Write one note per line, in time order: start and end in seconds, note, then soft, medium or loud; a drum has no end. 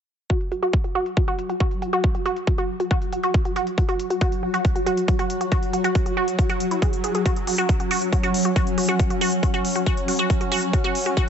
0.30 11.29 F#3 medium
0.30 0.33 F#4 loud
0.30 7.28 F#4 medium
0.30 kick loud
0.30 closed hi-hat loud
0.41 closed hi-hat soft
0.52 0.58 F#4 medium
0.52 closed hi-hat medium
0.63 0.65 F#4 loud
0.63 closed hi-hat soft
0.73 kick loud
0.84 0.91 F#4 medium
0.84 closed hi-hat soft
0.95 0.98 F#4 loud
1.06 closed hi-hat soft
1.17 1.24 F#4 medium
1.17 kick loud
1.17 closed hi-hat medium
1.28 1.30 F#4 loud
1.28 closed hi-hat soft
1.39 closed hi-hat medium
1.49 1.56 F#4 medium
1.49 closed hi-hat soft
1.60 1.63 F#4 loud
1.60 kick loud
1.60 closed hi-hat medium
1.71 closed hi-hat soft
1.82 1.89 F#4 medium
1.82 closed hi-hat medium
1.93 1.96 F#4 loud
1.93 closed hi-hat soft
2.04 kick loud
2.04 closed hi-hat medium
2.15 2.21 F#4 medium
2.15 closed hi-hat soft
2.26 2.28 F#4 loud
2.26 closed hi-hat medium
2.36 closed hi-hat soft
2.47 2.54 F#4 medium
2.47 kick loud
2.47 closed hi-hat medium
2.58 2.61 F#4 loud
2.58 closed hi-hat soft
2.80 2.87 F#4 medium
2.80 closed hi-hat soft
2.91 2.94 F#4 loud
2.91 kick loud
2.91 closed hi-hat medium
3.02 closed hi-hat soft
3.13 3.19 F#4 medium
3.13 closed hi-hat medium
3.23 3.26 F#4 loud
3.23 closed hi-hat soft
3.34 kick loud
3.34 closed hi-hat medium
3.45 3.52 F#4 medium
3.45 closed hi-hat soft
3.56 3.59 F#4 loud
3.56 closed hi-hat medium
3.67 closed hi-hat soft
3.78 3.85 F#4 medium
3.78 kick loud
3.78 closed hi-hat medium
3.89 3.91 F#4 loud
3.89 closed hi-hat soft
4.00 closed hi-hat medium
4.10 4.17 F#4 medium
4.10 closed hi-hat soft
4.21 4.24 F#4 loud
4.21 kick loud
4.21 closed hi-hat medium
4.32 closed hi-hat soft
4.43 4.50 F#4 medium
4.54 4.57 F#4 loud
4.54 closed hi-hat soft
4.65 kick loud
4.65 closed hi-hat medium
4.76 4.82 F#4 medium
4.76 closed hi-hat soft
4.86 4.89 F#4 loud
4.86 closed hi-hat medium
4.97 closed hi-hat soft
5.08 5.15 F#4 medium
5.08 kick loud
5.08 closed hi-hat medium
5.19 5.22 F#4 loud
5.19 closed hi-hat soft
5.30 closed hi-hat medium
5.41 5.48 F#4 medium
5.41 closed hi-hat soft
5.52 5.54 F#4 loud
5.52 kick loud
5.52 closed hi-hat medium
5.63 closed hi-hat soft
5.73 5.80 F#4 medium
5.73 closed hi-hat medium
5.84 5.87 F#4 loud
5.84 closed hi-hat soft
5.95 kick loud
5.95 closed hi-hat medium
6.06 6.13 F#4 medium
6.06 closed hi-hat soft
6.17 6.20 F#4 loud
6.28 closed hi-hat soft
6.39 6.45 F#4 medium
6.39 kick loud
6.39 closed hi-hat medium
6.50 6.52 F#4 loud
6.50 closed hi-hat soft
6.60 closed hi-hat medium
6.71 6.76 E4 medium
6.71 closed hi-hat soft
6.82 6.85 G#4 medium
6.82 kick loud
6.82 closed hi-hat medium
6.93 closed hi-hat soft
7.04 7.11 G#4 medium
7.04 closed hi-hat medium
7.15 7.19 G#4 medium
7.15 closed hi-hat soft
7.26 11.29 C#4 medium
7.26 7.28 F#4 loud
7.26 kick loud
7.26 closed hi-hat medium
7.36 closed hi-hat soft
7.47 7.52 F#4 medium
7.47 open hi-hat loud
7.58 7.61 F#4 loud
7.58 closed hi-hat soft
7.69 kick loud
7.69 closed hi-hat medium
7.80 7.84 F#4 medium
7.80 closed hi-hat soft
7.91 7.94 F#4 loud
7.91 open hi-hat loud
8.02 closed hi-hat soft
8.13 8.17 F#4 medium
8.13 kick loud
8.13 closed hi-hat medium
8.23 8.26 F#4 loud
8.23 closed hi-hat soft
8.34 open hi-hat loud
8.45 8.50 F#4 medium
8.45 closed hi-hat soft
8.56 8.59 F#4 loud
8.56 kick loud
8.56 closed hi-hat medium
8.67 closed hi-hat soft
8.78 8.82 F#4 medium
8.78 open hi-hat loud
8.89 8.91 F#4 loud
8.89 closed hi-hat soft
8.99 kick loud
8.99 closed hi-hat medium
9.10 9.15 F#4 medium
9.10 closed hi-hat soft
9.21 9.24 F#4 loud
9.21 open hi-hat loud
9.32 closed hi-hat soft
9.43 9.47 F#4 medium
9.43 kick loud
9.43 closed hi-hat medium
9.54 9.57 F#4 loud
9.54 closed hi-hat soft
9.65 open hi-hat loud
9.76 9.80 F#4 medium
9.76 closed hi-hat soft
9.86 9.89 F#4 loud
9.86 kick loud
9.86 closed hi-hat medium
9.97 closed hi-hat soft
10.08 10.13 F#4 medium
10.08 open hi-hat loud
10.19 10.22 F#4 loud
10.19 closed hi-hat soft
10.30 kick loud
10.30 closed hi-hat medium
10.41 10.45 F#4 medium
10.41 closed hi-hat soft
10.52 10.54 F#4 loud
10.52 open hi-hat loud
10.63 closed hi-hat soft
10.73 10.78 F#4 medium
10.73 kick loud
10.73 closed hi-hat medium
10.84 10.87 F#4 loud
10.84 closed hi-hat soft
10.95 open hi-hat loud
11.06 11.11 F#4 medium
11.06 closed hi-hat soft
11.17 11.20 F#4 loud
11.17 kick loud
11.17 closed hi-hat medium